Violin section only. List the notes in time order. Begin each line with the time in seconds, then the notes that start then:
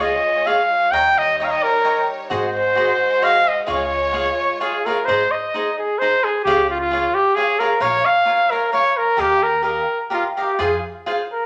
Already playing: G#3 F4 C#5
0.92 G3 D#4 C#5
2.31 G#3 F#4 C5
3.67 F4 C#5